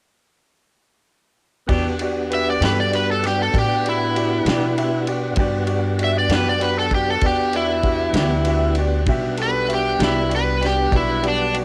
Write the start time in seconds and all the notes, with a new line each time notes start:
1.67 E2 E3 B3 D4 F#4 G4 D5 F#5, kick, ride
1.99 F#4 G4 D5, ride
2.30 F#4 G4 B4, ride
2.35 E5
2.50 D5
2.61 G2 E3 B3 D4 F#4 G4 A4, snare, ride
2.65 B4
2.80 D5
2.91 F#4 G4 D5, ride
2.95 B4
3.12 A4
3.23 F#4 G4 D5, snare, ride
3.27 G4
3.42 A4
3.54 A2 F#4 G4 D5, kick, ride
3.59 G4
3.84 F#4 G4 D5, ride
3.89 E4
4.15 F#4 G4 D5, ride
4.45 B2 B3 D4 F#4 G4 D5, snare, ride
4.49 E3
4.78 F#4 G4 E5, ride
5.07 F#4 G4 D5, ride
5.35 G2 B3 D4 G4 F#5, kick, ride
5.39 F#4 D5
5.67 F#4 G4 D5, ride
5.98 F#4 G4 D5, ride
6.04 E5
6.19 D5
6.29 F#2 E3 B3 D4 F#4 G4 B4, snare, ride
6.34 B4
6.49 D5
6.59 F#4 G4 B4 D5, ride
6.79 A4
6.91 F#4 G4 D5, kick, ride
6.95 G4
7.10 A4
7.21 E2 F#4 G4 D5, kick, ride
7.26 G4
7.53 E4 F#4 G4 D5, ride
7.83 F#4 G4 E5, kick, ride
8.13 D2 E3 B3 D4 F#4 G4 D5, snare, ride
8.45 F#4 G4 E5, ride
8.75 F#4 G4, ride
8.79 D5
9.06 B1 G3 B3 D4 F#4 G4 E5 F#5, kick, ride
9.37 F#4 G4 A4, ride
9.43 B4
9.68 F#4 G4 E5, ride
9.74 G4
9.99 C2 E3 B3 D4 F#4 G4 D5, snare, ride
10.04 E4
10.29 F#4 G4 D5, ride
10.36 B4
10.60 F#4 G4 D5, ride
10.64 G4, snare
10.92 B1 F#4 G4 D5, kick, ride
10.97 E4
11.23 F#4 G4 D5, ride
11.28 D4
11.54 F#4 G4 D5, ride